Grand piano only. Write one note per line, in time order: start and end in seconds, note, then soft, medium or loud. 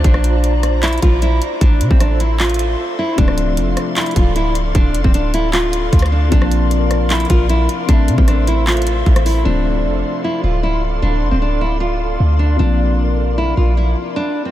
3.15 6.27 C3 medium
3.15 6.28 F3 medium
3.19 6.29 A3 medium
3.19 6.30 D4 medium
6.29 7.84 C3 medium
6.29 7.85 F3 medium
6.33 7.86 A#3 medium
6.33 7.87 D4 medium
7.86 9.41 C3 medium
7.90 9.43 A3 medium
7.90 9.44 E5 medium
9.43 12.54 C3 medium
9.43 12.55 F3 medium
9.47 12.56 A3 medium
9.47 12.57 D4 medium
12.56 14.11 C3 medium
12.56 14.12 F3 medium
12.60 14.13 A#3 medium
12.60 14.15 D4 medium